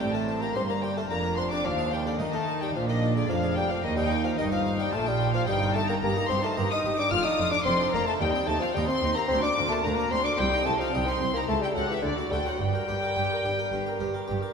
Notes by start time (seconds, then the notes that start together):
0.00 A1 A2 G3 C4 D5 G5
0.11 A3 A#4 A5
0.28 D4
0.41 A#3 G4 A#5
0.52 G1 G2 A#3 C4 C6
0.68 A#3 D5 A#5
0.82 G3 G4 G5
0.95 A3 A#4 A5
1.09 F1 F2 A#3 D4 D5 A#5
1.24 A#4
1.36 C4 D4 C6
1.51 D4 G4 D6
1.65 D#2 F3 F5
1.78 D#5
1.92 G3 G4 G5
2.06 D3 A#4 D5
2.18 D#2 D#3 D#4 D#5
2.33 A3 A#4 A5
2.49 D#4
2.61 G3 G4 G5
2.75 A#1 A#2 F3 D4 F5
2.88 D#3 A#4 D#5
3.03 D4
3.15 D3 G#4 D5
3.29 F1 F2 F3 D4 A#4 F5
3.43 G#4
3.56 G3 A#3 G5
3.70 F3 D4 F5
3.82 D#2 D#3 D#4 D#5
3.96 G3 D#5 G5
4.12 G4
4.24 F3 A#4 F5
4.37 G1 G2 D#3 D#4 D#5
4.52 F3 A#4 F5
4.66 D#4
4.78 G3 G4 G5
4.92 A#1 A#2 A3 A#3 F4 A5
5.07 G3 D#5 G5
5.21 G4
5.34 F3 A#4 F5
5.47 G1 G2 G3 D#4 D#5 G5
5.63 A#4
5.73 A3 D#4 A5
5.87 A#3 G4 A#5
6.01 G1 G2 A#3 G4 A#5
6.17 D#4 D#5
6.27 G1 G2 C4 G4 C6
6.43 A3 D#4 A#4 A5
6.55 G1 G2 G4 D#5 A#5
6.60 A#3
6.70 D#4 A#4 D#6
6.84 G1 G2 D#4 G4
6.98 D4 D#4 G4 D6
7.10 F1 F2 F4 F6
7.24 D4 D#4 D5 D#6
7.38 F1 F2 F4 A4
7.51 D4 D6
7.63 F1 F2 C4 F4 C6
7.68 D5
7.77 D4 A4
7.91 F1 F2 A#3 D4 F4 A#5
8.05 A3 D4 A4 A5
8.18 D#2 G3 D#4 G5
8.34 C4 D#5
8.46 D#2 A3 D#4 G4 A5
8.59 F3 C4 C5 F5
8.72 D#2 G3 D#4 G5
8.77 D#2 D#5
8.87 C4 C5 C6
9.03 D#2 D#4
9.15 A#3 C4 G4 A#5
9.28 D2 C4 D4 C6
9.42 A#3 D4 D5 D6
9.57 D2 D4 F4
9.69 A3 A#3 A#4 A5
9.84 D2 A#3 D4 D5 A#5
9.97 A#3 A#4
10.10 D2 C4 D4 C6
10.24 A#3 D4 F4 D6
10.38 C2 G3 C4 G5
10.52 D#4 D#5
10.64 C2 A3 C4 G4 A5
10.78 F3 D#4 C5 F5
10.92 C2 G3 C4 D#5 G5
11.06 C4 D#4 C5 C6
11.21 C2 C4 D#4
11.34 A#3 D#4 G4 A#5
11.47 C#2 A3 A4 A5
11.61 G3 G4 E5 G5
11.74 C#2 F#3 G4 A4 F#5
11.89 E3 G4 A4 E5
12.02 D2 D3 A4 D5
12.17 F#4 D5
12.30 D2 G3 F#4 A4 G5
12.46 F#3 F#4 C5 F#5
12.59 G1 G2 G3 G4 G5
12.74 A#4 G5
12.88 G1 G2 G4 A#4
13.02 A#4 D5
13.16 G1 G2 G4 G5
13.30 A#4 D5
13.44 G1 G2 G4
13.59 A#4
13.72 G1 G2 D4 G4
13.87 A#4 G5
14.00 G1 G2 G4 A#4
14.14 A#4 D5
14.28 G1 G2 G4 G5
14.42 A#4 D5